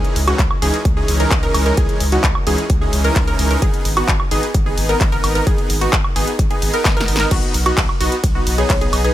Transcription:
Already playing: supersaw synth E3 G#3 C#4 D#4 G#4, synth pluck G#4
0.05 closed hi-hat
0.16 sub bass C#2, open hi-hat
0.27 supersaw synth E3 G#3 C#4 D#4 F#4, synth pluck F#4, closed hi-hat, high woodblock
0.39 sub bass C#2, kick, clap, closed hi-hat
0.51 high woodblock
0.62 sub bass C#2, supersaw synth E3 G#3 C#4 D#4 G#4, synth pluck G#4, open hi-hat
0.74 closed hi-hat
0.85 sub bass C#2, kick, closed hi-hat
0.97 supersaw synth E3 G#3 C#4 D#4 G#4, synth pluck G#4
1.08 sub bass C#2, open hi-hat
1.20 supersaw synth E3 G#3 C#4 D#4 A#4, synth pluck A#4, closed hi-hat
1.31 sub bass C#2, kick, clap, closed hi-hat
1.43 supersaw synth E3 G#3 C#4 D#4 A#4, synth pluck A#4, closed hi-hat
1.54 sub bass C#2, open hi-hat, high woodblock
1.66 supersaw synth E3 G#3 C#4 D#4 A#4, synth pluck A#4, closed hi-hat
1.77 sub bass C#2, supersaw synth E3 G#3 C#4 D#4 G#4, synth pluck G#4, kick, closed hi-hat
1.89 closed hi-hat
2.00 sub bass C#2, open hi-hat
2.12 supersaw synth E3 G#3 C#4 D#4 F#4, synth pluck F#4, closed hi-hat
2.24 sub bass C#2, kick, clap, closed hi-hat
2.35 high woodblock
2.47 sub bass C#2, supersaw synth E3 G#3 C#4 D#4 G#4, synth pluck G#4, open hi-hat
2.58 closed hi-hat
2.70 sub bass C#2, kick, closed hi-hat
2.81 supersaw synth E3 G#3 C#4 D#4 G#4, synth pluck G#4
2.93 sub bass C#2, open hi-hat
3.04 supersaw synth E3 G#3 C#4 D#4 A#4, synth pluck A#4, closed hi-hat
3.16 sub bass C#2, kick, clap, closed hi-hat
3.28 supersaw synth E3 G#3 C#4 D#4 A#4, synth pluck A#4, closed hi-hat
3.39 sub bass C#2, open hi-hat
3.51 supersaw synth E3 G#3 C#4 D#4 A#4, synth pluck A#4, closed hi-hat
3.62 sub bass G#1, supersaw synth B3 D#4 G#4, synth pluck G#4, kick, closed hi-hat
3.74 closed hi-hat
3.85 sub bass G#1, open hi-hat
3.97 supersaw synth B3 D#4 F#4, synth pluck F#4, closed hi-hat, high woodblock
4.08 sub bass G#1, kick, clap, closed hi-hat
4.20 high woodblock
4.31 sub bass G#1, supersaw synth B3 D#4 G#4, synth pluck G#4, open hi-hat
4.43 closed hi-hat
4.54 sub bass G#1, kick, closed hi-hat
4.66 supersaw synth B3 D#4 G#4, synth pluck G#4
4.78 sub bass G#1, open hi-hat
4.89 supersaw synth B3 D#4 A#4, synth pluck A#4, closed hi-hat
5.01 sub bass G#1, kick, clap, closed hi-hat
5.12 supersaw synth B3 D#4 A#4, synth pluck A#4, closed hi-hat
5.24 sub bass G#1, open hi-hat, high woodblock
5.35 supersaw synth B3 D#4 A#4, synth pluck A#4, closed hi-hat
5.47 sub bass G#1, supersaw synth B3 D#4 G#4, synth pluck G#4, kick, closed hi-hat
5.58 closed hi-hat
5.70 sub bass G#1, open hi-hat
5.81 supersaw synth B3 D#4 F#4, synth pluck F#4, closed hi-hat
5.93 sub bass G#1, kick, clap, closed hi-hat
6.04 high woodblock
6.16 sub bass G#1, supersaw synth B3 D#4 G#4, synth pluck G#4, open hi-hat
6.27 closed hi-hat
6.39 sub bass G#1, kick, closed hi-hat
6.51 supersaw synth B3 D#4 G#4, synth pluck G#4, closed hi-hat
6.62 sub bass G#1, open hi-hat
6.74 supersaw synth B3 D#4 A#4, synth pluck A#4, closed hi-hat
6.85 sub bass G#1, kick, snare, clap, closed hi-hat
6.97 supersaw synth B3 D#4 A#4, synth pluck A#4, snare, closed hi-hat
7.08 sub bass G#1, open hi-hat
7.16 supersaw synth A#4, snare, closed hi-hat
7.20 supersaw synth B3 D#4, synth pluck A#4
7.31 sub bass B1, supersaw synth B3 D#4 F#4, synth pluck F#4, kick, closed hi-hat, crash, ride
7.43 closed hi-hat
7.54 sub bass B1, open hi-hat
7.66 supersaw synth B3 D#4 F#4, synth pluck F#4, closed hi-hat, high woodblock
7.77 sub bass B1, kick, clap, closed hi-hat, ride
7.89 high woodblock
8.01 sub bass B1, supersaw synth B3 D#4 F#4, synth pluck F#4, open hi-hat
8.12 closed hi-hat
8.24 sub bass B1, kick, closed hi-hat, ride
8.35 supersaw synth B3 D#4 F#4, synth pluck F#4
8.47 sub bass B1, open hi-hat
8.58 supersaw synth B3 D#4 G#4, synth pluck G#4, marimba C#5, closed hi-hat
8.70 sub bass B1, marimba C#5, kick, clap, closed hi-hat, ride
8.81 supersaw synth B3 D#4 G#4, synth pluck G#4, closed hi-hat
8.93 sub bass B1, open hi-hat, high woodblock
9.04 supersaw synth B3 D#4 G#4, synth pluck G#4, marimba B4, closed hi-hat

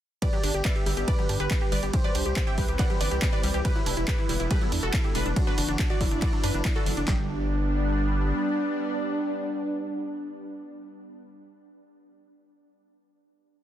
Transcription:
0.22 analog synth pad D3 G3 B3, synth arpeggio sound G3, synth pluck B4 D5, soft synth lead D5, kick, closed hi-hat, ride
0.33 synth arpeggio sound F#3, synth pluck G4, closed hi-hat
0.44 analog synth bass G1, synth arpeggio sound D4, synth pluck G4, open hi-hat
0.54 analog synth bass G1, synth pluck G4, closed hi-hat
0.65 synth arpeggio sound B3, synth pluck B4 D5, soft synth lead E5, kick, clap, closed hi-hat, ride
0.76 synth arpeggio sound G4, synth pluck G4, closed hi-hat
0.86 analog synth bass G1, synth arpeggio sound G3, synth pluck G4, open hi-hat
0.97 analog synth bass G1, synth pluck G4, closed hi-hat
1.08 synth arpeggio sound G3, synth pluck B4 D5, soft synth lead B4, kick, closed hi-hat, ride
1.18 synth arpeggio sound F#3, synth pluck G4, closed hi-hat
1.29 analog synth bass G2, synth arpeggio sound D4, synth pluck G4, open hi-hat
1.40 analog synth bass G1, synth pluck G4 B4, closed hi-hat
1.51 synth arpeggio sound B3, synth pluck G4, kick, clap, closed hi-hat, ride
1.61 synth pluck G4, synth arpeggio sound G4, closed hi-hat
1.72 analog synth bass G1, synth arpeggio sound G3, synth pluck B4 D5, open hi-hat
1.83 analog synth bass G1, synth pluck G4, closed hi-hat
1.93 analog synth pad E3 G3 C4, synth arpeggio sound G3, synth pluck G4, soft synth lead C5, kick, closed hi-hat, ride
2.04 synth arpeggio sound F#3, synth pluck B4 D5, closed hi-hat
2.15 analog synth bass C2, synth arpeggio sound D4, synth pluck G4, open hi-hat
2.26 analog synth bass C2, synth pluck G4, closed hi-hat
2.36 synth arpeggio sound B3, kick, clap, closed hi-hat, ride
2.47 synth arpeggio sound G4, synth pluck E5 G5, closed hi-hat
2.58 analog synth bass C2, synth arpeggio sound G3, synth pluck G4, soft synth lead B4, kick, open hi-hat
2.68 analog synth bass C2, synth pluck G4, closed hi-hat
2.79 synth arpeggio sound G3, synth pluck D5 F#5, kick, clap, closed hi-hat, ride
2.90 synth arpeggio sound F#3, synth pluck G4, closed hi-hat
3.01 analog synth bass G1, synth arpeggio sound D4, synth pluck B4 D5, open hi-hat
3.11 analog synth bass C2, synth pluck G4, closed hi-hat
3.22 synth arpeggio sound B3, synth pluck G4, kick, clap, closed hi-hat, ride
3.33 synth arpeggio sound G4, synth pluck B4 D5, closed hi-hat
3.43 analog synth bass C2, synth arpeggio sound G3, synth pluck G4, open hi-hat
3.54 analog synth bass C2, synth pluck G4, closed hi-hat
3.65 synth arpeggio sound G3, analog synth pad B3, synth pluck G4 B4, soft synth lead B4, kick, closed hi-hat, ride
3.76 synth arpeggio sound F#3, synth pluck E4, closed hi-hat
3.86 analog synth bass E1, synth arpeggio sound D4, synth pluck E4, open hi-hat
3.97 analog synth bass E1, synth pluck E4, closed hi-hat
4.08 synth arpeggio sound B3, synth pluck G4 B4, soft synth lead B4, kick, clap, closed hi-hat, ride
4.18 synth pluck E4, synth arpeggio sound G4, closed hi-hat
4.29 analog synth bass E1, synth arpeggio sound G3, synth pluck E4, open hi-hat
4.40 analog synth bass E1, synth pluck E4, closed hi-hat
4.51 synth arpeggio sound G3, synth pluck G4 B4, soft synth lead A4, kick, closed hi-hat, ride
4.61 synth arpeggio sound F#3, synth pluck E4, closed hi-hat
4.72 analog synth bass E2, synth arpeggio sound D4, synth pluck E4, open hi-hat
4.83 analog synth bass E1, synth pluck F#4 A4, closed hi-hat
4.93 synth arpeggio sound B3, synth pluck E4, kick, clap, closed hi-hat, ride
5.04 synth pluck E4, synth arpeggio sound G4, closed hi-hat
5.15 analog synth bass E1, synth arpeggio sound G3, synth pluck D4 B4, open hi-hat
5.26 analog synth bass E1, synth pluck D4, closed hi-hat
5.36 analog synth pad E3 F#3 D4, synth arpeggio sound F#3, synth pluck D4, soft synth lead F#4, kick, closed hi-hat, ride
5.47 synth arpeggio sound F#3, synth pluck D4 B4, closed hi-hat
5.58 analog synth bass F#1, synth arpeggio sound D4, synth pluck D4, open hi-hat
5.69 analog synth bass F#1, synth pluck D4, closed hi-hat
5.79 synth arpeggio sound B3, synth pluck D4, kick, clap, closed hi-hat, ride
5.90 synth arpeggio sound F#4, synth pluck F#4 D5, closed hi-hat
6.01 analog synth bass F#1, synth arpeggio sound F#3, synth pluck D4, soft synth lead E4, kick, open hi-hat
6.11 analog synth bass F#1, synth pluck D4, closed hi-hat
6.22 synth arpeggio sound F#3, synth pluck F#4 D5, kick, clap, closed hi-hat, ride
6.33 synth arpeggio sound F#3, synth pluck D4, closed hi-hat
6.43 analog synth bass F#2, synth arpeggio sound D4, synth pluck D4 B4, open hi-hat
6.54 analog synth bass F#1, synth pluck D4, closed hi-hat
6.65 synth arpeggio sound B3, synth pluck D4, kick, clap, closed hi-hat, ride
6.76 synth arpeggio sound F#4, synth pluck F#4 A4, closed hi-hat
6.86 analog synth bass F#1, synth arpeggio sound F#3, synth pluck D4, open hi-hat
6.97 analog synth bass F#1, synth pluck D4, closed hi-hat
7.08 analog synth bass G1, synth arpeggio sound G3, analog synth pad G3 B3 D4, soft synth lead D4, synth pluck G4, kick, snare, clap

